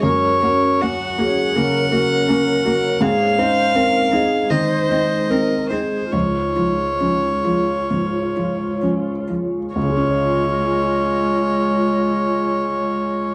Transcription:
<<
  \new Staff \with { instrumentName = "Violin" } { \time 4/4 \key des \major \tempo 4 = 70 des''4 ges''2. | f''2 ees''4. c''8 | des''2. r4 | des''1 | }
  \new Staff \with { instrumentName = "Viola" } { \time 4/4 \key des \major bes'8 bes'8 ges'8 aes'8 bes'8 bes'4. | aes'8 c''8 bes'8 aes'8 c''4 bes'8 aes'8 | f'2.~ f'8 r8 | f'1 | }
  \new Staff \with { instrumentName = "Ambient pad" } { \time 4/4 \key des \major << { <des' des''>1 | <ees' c''>1 | <f' des''>1 | <f' des''>1 | } \\ { bes1 | aes1~ | aes1 | aes1 | } >> }
  \new Staff \with { instrumentName = "Upright piano" } { \time 4/4 \key des \major ges,8 ges'8 des'8 ges'8 des8 ges'8 des'8 ges'8 | aes,8 ees'8 c'8 ees'8 ees8 ees'8 c'8 ees'8 | des,8 f'8 des'8 f'8 aes,8 f'8 des'8 f'8 | <des, des aes des' f' des''>1 | }
  \new Staff \with { instrumentName = "Cello" } { \time 4/4 \key des \major bes8 bes8 bes8 bes8 bes8 bes8 bes8 bes8 | c'8 c'8 c'8 c'8 c'8 c'8 c'8 c'8 | f8 f8 f8 f8 f8 f8 f8 f8 | aes1 | }
>>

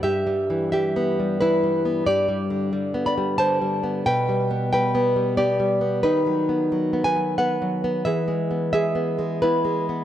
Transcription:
\new Staff \with { instrumentName = "Nylon-string guitar" } { \time 3/4 \key g \major \tempo 4 = 90 << { <g' e''>4 <g' e''>4 <e' b'>4 | <g' d''>4. <d'' b''>8 <c'' a''>4 | <b' g''>4 <b' g''>4 <g' d''>4 | \key e \major <dis' b'>4. <b' gis''>8 <b' fis''>4 |
<gis' e''>4 <gis' e''>4 <e' b'>4 | } \\ { \tuplet 3/2 { g,8 g8 e8 g8 b8 g8 e8 g8 b8 } | \tuplet 3/2 { g,8 g8 d8 g8 b8 g8 d8 g8 b8 } | \tuplet 3/2 { b,8 g8 b8 g8 b8 g8 b8 g8 b8 } | \tuplet 3/2 { dis8 fis8 b8 fis8 b8 fis8 b8 fis8 b8 } |
\tuplet 3/2 { e8 gis8 b8 gis8 b8 gis8 b8 gis8 b8 } | } >> }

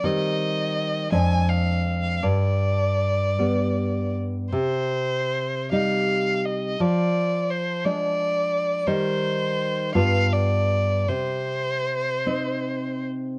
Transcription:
<<
  \new Staff \with { instrumentName = "Violin" } { \time 6/8 \key c \minor \tempo 4. = 53 ees''4. aes''8 f''4 | d''2~ d''8 r8 | c''4. f''4 ees''8 | d''4 c''8 d''4. |
c''4. f''8 d''4 | c''2~ c''8 r8 | }
  \new Staff \with { instrumentName = "Nylon-string guitar" } { \clef bass \time 6/8 \key c \minor <ees g c'>4. <f, aes d'>4. | g,4. <g b>4. | c4. <g ees'>4. | f4. <aes d'>4. |
<ees g ees'>4. <g, b f'>4. | c4. <c' ees'>4. | }
>>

